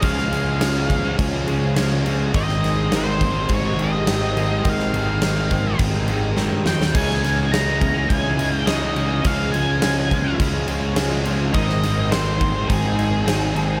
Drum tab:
CC |x-x-x-x-x-x-x-x-|x-x-x-x-x-x-x-x-|x-x-x-x-x-x-----|x-x-x-x-x-x-x-x-|
SD |-o--o-------o---|-oo-o-------o---|-o--o-------o-oo|-oo-o-------o---|
BD |o-----o-o-------|o-----o-o-------|o-----o-o-------|o-----o-o-------|

CC |x-x-x-x-x-x-x-x-|x-x-x-x-x-x-x-x-|
SD |----o-------o---|-oo-o-------o---|
BD |o-----o-o-------|o-----o-o-------|